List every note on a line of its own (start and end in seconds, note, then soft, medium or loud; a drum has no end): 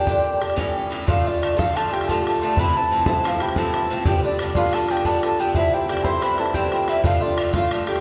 0.00 1.27 D4 medium
0.00 1.09 F4 medium
0.00 1.92 G4 medium
0.00 0.84 G5 loud
0.07 0.42 A#2 medium
0.07 0.40 D3 medium
0.07 0.40 D4 medium
0.07 0.39 G4 medium
0.07 bodhran medium
0.26 bodhran soft
0.41 0.56 D3 soft
0.41 0.56 D4 medium
0.41 0.56 G4 medium
0.41 bodhran medium
0.50 bodhran medium
0.56 0.89 A2 medium
0.56 0.90 E3 medium
0.56 0.90 C#4 medium
0.56 0.91 G4 medium
0.56 bodhran medium
0.90 1.05 A2 medium
0.90 1.06 E3 medium
0.90 1.06 C#4 medium
0.90 1.07 G4 medium
0.90 bodhran medium
1.06 1.25 A2 medium
1.06 1.25 D3 medium
1.06 1.25 A3 medium
1.06 1.25 F4 medium
1.06 1.57 F4 medium
1.06 1.29 F5 loud
1.06 bodhran loud
1.26 1.41 D3 soft
1.26 1.41 A3 soft
1.26 4.07 D4 medium
1.26 1.42 F4 medium
1.26 1.61 D5 medium
1.26 bodhran soft
1.41 1.56 A2 medium
1.41 1.57 D3 medium
1.41 1.56 A3 medium
1.41 1.55 F4 medium
1.41 bodhran medium
1.56 1.74 A2 medium
1.56 1.75 D3 medium
1.56 1.75 A3 medium
1.56 1.75 F4 medium
1.56 3.24 F4 medium
1.56 1.78 F5 loud
1.56 bodhran loud
1.75 1.91 A2 medium
1.75 1.92 D3 medium
1.75 1.92 A3 medium
1.75 1.91 F4 medium
1.75 2.09 A4 medium
1.75 1.94 A5 loud
1.75 bodhran medium
1.92 2.08 D3 soft
1.92 2.08 A3 soft
1.92 2.08 F4 medium
1.92 3.40 G4 medium
1.92 2.10 G5 medium
1.92 bodhran medium
2.01 bodhran medium
2.08 2.26 A2 medium
2.08 2.26 D3 medium
2.08 2.26 A3 medium
2.08 2.25 F4 medium
2.08 2.25 A4 medium
2.08 2.26 A5 medium
2.08 bodhran medium
2.25 2.41 D3 soft
2.25 2.42 A3 soft
2.25 2.42 F4 medium
2.25 2.75 A4 medium
2.25 2.61 A5 loud
2.25 bodhran medium
2.42 2.57 A2 medium
2.42 2.58 D3 medium
2.42 2.58 A3 medium
2.42 2.58 F4 medium
2.57 2.75 A2 medium
2.57 2.76 E3 medium
2.57 2.75 C4 medium
2.57 2.74 E4 loud
2.57 4.62 B4 medium
2.57 2.79 B5 loud
2.57 bodhran medium
2.75 2.90 E3 medium
2.75 2.91 C4 soft
2.75 2.91 E4 soft
2.75 3.06 A4 medium
2.75 3.08 A5 loud
2.75 bodhran soft
2.91 3.06 A2 medium
2.91 3.07 E3 medium
2.91 3.06 C4 medium
2.91 3.05 E4 medium
3.06 3.23 A2 medium
3.06 3.24 E3 medium
3.06 3.25 C4 medium
3.06 3.24 E4 medium
3.06 3.57 A4 loud
3.06 3.29 A5 loud
3.06 bodhran loud
3.24 3.40 A2 medium
3.24 3.41 E3 medium
3.24 3.41 C4 medium
3.24 3.40 E4 medium
3.24 4.56 F4 medium
3.24 3.44 F5 loud
3.24 bodhran medium
3.40 3.56 E3 soft
3.40 3.56 C4 soft
3.40 3.57 E4 medium
3.40 4.06 G4 medium
3.40 3.60 G5 medium
3.40 bodhran medium
3.49 bodhran medium
3.56 3.74 A2 medium
3.56 3.75 E3 medium
3.56 3.74 C4 medium
3.56 3.73 E4 loud
3.56 4.73 A4 medium
3.56 4.07 A5 loud
3.56 bodhran medium
3.74 3.90 E3 soft
3.74 3.91 C4 soft
3.74 3.90 E4 medium
3.74 bodhran medium
3.90 4.05 A2 medium
3.90 4.05 E3 medium
3.90 4.06 C4 medium
3.90 4.07 E4 medium
4.05 4.24 G2 medium
4.05 4.24 D3 medium
4.05 4.24 B3 medium
4.05 4.23 D4 medium
4.05 4.90 G4 medium
4.05 4.23 G5 loud
4.05 bodhran loud
4.23 4.40 D3 soft
4.23 4.39 B3 medium
4.23 4.40 D4 medium
4.23 7.05 D4 medium
4.23 4.54 D5 loud
4.23 bodhran soft
4.39 4.56 G2 medium
4.39 4.56 D3 medium
4.39 4.56 B3 medium
4.39 4.55 D4 medium
4.39 bodhran medium
4.55 4.72 G2 medium
4.55 4.73 D3 medium
4.55 4.74 B3 medium
4.55 4.74 D4 medium
4.55 5.63 F4 loud
4.55 4.76 F5 loud
4.55 bodhran medium
4.73 4.90 G2 medium
4.73 4.90 D3 medium
4.73 4.89 B3 medium
4.73 4.89 D4 medium
4.73 5.05 A4 medium
4.73 4.93 A5 loud
4.73 bodhran medium
4.88 5.04 D3 soft
4.88 5.05 B3 medium
4.88 5.05 D4 medium
4.88 5.40 G4 medium
4.88 5.07 G5 loud
4.88 bodhran medium
4.97 bodhran medium
5.05 5.23 G2 medium
5.05 5.23 D3 medium
5.05 5.24 B3 medium
5.05 5.23 D4 medium
5.05 5.22 A4 medium
5.05 5.24 A5 loud
5.05 bodhran medium
5.22 5.38 D3 soft
5.22 5.39 B3 soft
5.22 5.39 D4 soft
5.22 6.38 A4 medium
5.22 5.42 A5 loud
5.22 bodhran medium
5.39 5.54 G2 medium
5.39 5.54 D3 medium
5.39 5.56 B3 medium
5.39 5.56 D4 medium
5.39 5.73 G4 medium
5.39 5.55 G5 loud
5.55 5.73 G2 medium
5.55 5.73 D3 medium
5.55 5.72 C4 medium
5.55 5.72 E4 medium
5.55 6.79 E4 medium
5.55 5.76 E5 loud
5.55 bodhran medium
5.73 5.88 D3 soft
5.73 5.88 C4 soft
5.73 5.89 E4 medium
5.73 5.89 G4 medium
5.73 5.88 G5 loud
5.73 bodhran soft
5.88 6.05 G2 medium
5.88 6.04 D3 medium
5.88 6.04 C4 medium
5.88 6.03 E4 medium
5.88 6.54 G4 medium
5.88 6.06 G5 loud
5.88 bodhran medium
5.97 bodhran medium
6.04 6.20 G2 medium
6.04 6.21 D3 medium
6.04 6.22 C4 medium
6.04 6.22 E4 medium
6.04 6.28 C5 medium
6.04 6.24 C6 loud
6.04 bodhran medium
6.22 6.38 G2 medium
6.22 6.38 D3 medium
6.22 6.38 C4 medium
6.22 6.37 E4 medium
6.22 8.00 B4 medium
6.22 6.41 B5 loud
6.22 bodhran medium
6.38 6.53 D3 soft
6.38 6.54 C4 medium
6.38 6.54 E4 medium
6.38 8.00 A4 medium
6.38 6.57 A5 medium
6.38 bodhran medium
6.46 bodhran medium
6.54 6.72 G2 medium
6.54 6.73 D3 medium
6.54 6.72 C4 loud
6.54 6.71 E4 medium
6.54 7.88 G4 medium
6.54 6.91 G5 loud
6.54 bodhran medium
6.72 6.88 D3 soft
6.72 6.88 C4 soft
6.72 6.89 E4 soft
6.72 6.93 F4 medium
6.72 bodhran medium
6.87 7.03 G2 medium
6.87 7.03 D3 medium
6.87 7.04 C4 medium
6.87 7.10 E4 medium
6.87 7.04 E4 medium
6.87 7.05 E5 loud
6.87 bodhran medium
7.03 7.22 A2 medium
7.03 7.22 D3 medium
7.03 7.21 A3 medium
7.03 7.55 F4 medium
7.03 7.20 F4 medium
7.03 7.24 F5 loud
7.03 bodhran loud
7.21 7.37 D3 soft
7.21 7.37 A3 medium
7.21 8.00 D4 medium
7.21 7.37 F4 medium
7.21 7.54 D5 medium
7.21 bodhran soft
7.37 7.53 A2 medium
7.37 7.52 D3 medium
7.37 7.52 A3 medium
7.37 7.52 F4 medium
7.37 bodhran medium
7.53 7.69 A2 medium
7.53 7.69 D3 medium
7.53 7.70 A3 medium
7.53 7.71 F4 medium
7.53 8.00 F4 medium
7.53 7.71 F5 loud
7.53 bodhran loud
7.71 7.87 A2 medium
7.71 7.87 D3 medium
7.71 7.87 A3 medium
7.71 7.85 F4 medium
7.71 bodhran medium
7.86 8.00 D3 soft
7.86 8.00 A3 medium
7.86 8.00 F4 medium
7.86 8.00 G4 medium
7.86 8.00 G5 medium
7.86 bodhran medium
7.96 bodhran medium